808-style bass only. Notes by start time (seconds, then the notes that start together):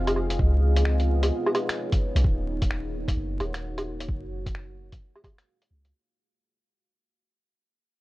Already playing: F1
0.39 C#2
2.15 B1
2.24 D#1
3.17 F#1
3.40 D#1
4.09 F#1
5.71 C#2